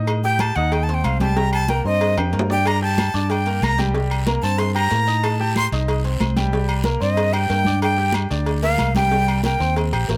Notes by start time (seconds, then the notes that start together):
Already playing: A2 D#4 D#5 D#6
0.07 cowbell, high conga, low agogo, claves
0.23 G4 G5 G6, high conga
0.39 A5, cowbell, high conga, low agogo, claves
0.55 D#2 D#4 D#5 F#5 D#6, cowbell, high conga
0.72 G5, cowbell, high conga, low agogo
0.83 A5
0.88 C4 C5 C6, cowbell, high conga
0.94 G5
1.04 C2 F5, cowbell, high conga, low agogo, claves
1.20 G3 G4 G5 A5, cowbell, high conga, low agogo
1.36 G3 G4 G5 A#5, cowbell
1.53 A5, high conga, low agogo, claves
1.69 A#3 A#4 G5 A#5, cowbell, high conga, low agogo
1.85 G2 C4 C5 D#5 C6, high conga
2.01 cowbell, high conga, low agogo
2.17 F2 G4 G5 G6, high conga, high timbale, low agogo, claves
2.33 G2 A#3 A#4 A#5, cowbell, high conga
2.39 low timbale
2.50 D4 D5 G5 D6, low timbale
2.65 A#5, cowbell, high conga, low agogo, long guiro, claves
2.82 G4 G5 A5 G6, high conga
2.98 cowbell, high conga, low agogo, short guiro, claves
3.14 G2 D4 D5 D6, cowbell, high conga, short guiro
3.30 G5, cowbell, high conga, low agogo, long guiro
3.46 A#3 A#4 A#5, cowbell, high conga
3.62 C2 A#5, cowbell, high conga, low agogo, short guiro, claves
3.78 G3 G4 G5, cowbell, high conga, low agogo, short guiro
3.94 G3 G4 G5, cowbell, high conga, long guiro
4.11 high conga, low agogo, claves
4.27 A#3 A#4 A#5, cowbell, high conga, low agogo, short guiro
4.42 G2 C4 C5 A5 C6, high conga, short guiro
4.58 C6, cowbell, high conga, low agogo, long guiro
4.75 G4 G5 A#5 G6, high conga, low agogo, claves
4.91 A2 A#3 A#4 A#5, cowbell, high conga, short guiro
5.07 D#4 D#5 D#6, short guiro
5.23 A5, cowbell, high conga, low agogo, long guiro, claves
5.40 G4 G5 G6, high conga
5.56 C6, cowbell, high conga, low agogo, short guiro, claves
5.72 C2 D#4 D#5 D#6, cowbell, high conga, short guiro
5.88 cowbell, high conga, low agogo, long guiro
6.04 C4 C5 C6, cowbell, high conga
6.20 C2, cowbell, high conga, low agogo, short guiro, claves
6.36 G3 G4 G5, cowbell, high conga, low agogo, short guiro
6.52 G3 G4 G5, cowbell, high conga, long guiro
6.68 high conga, low agogo, claves
6.84 A#3 A#4 A#5, cowbell, high conga, low agogo, short guiro
7.00 G2 C4 C5 D#5 C6, high conga, short guiro
7.16 cowbell, high conga, low agogo, long guiro
7.32 G4 G5 G6, high conga, low agogo, claves
7.49 G2 A#3 A#4 A#5, cowbell, high conga, short guiro
7.65 D4 D5 D6, high conga, short guiro
7.81 G5, cowbell, high conga, low agogo, long guiro, claves
7.97 G4 G5 G6, high conga
8.12 cowbell, high conga, low agogo, short guiro, claves
8.29 D2 D4 D5 D6, cowbell, high conga, short guiro
8.45 cowbell, high conga, low agogo, long guiro
8.62 A#3 A#4 F5 A#5, cowbell, high conga
8.78 C2, cowbell, high conga, low agogo, short guiro, claves
8.95 G3 G4 G5, cowbell, high conga, low agogo, short guiro
9.11 G3 G4 G5, cowbell, long guiro
9.27 high conga, low agogo, claves
9.44 A#3 A#4 G5 A#5, cowbell, high conga, low agogo, short guiro
9.60 D#2 C4 C5 C6, high conga, short guiro
9.76 cowbell, high conga, low agogo, long guiro
9.92 A#1 G4 G5 G6, high conga, low agogo, claves
10.08 A1 A#3 A#4 A#5, cowbell, high conga, low timbale, short guiro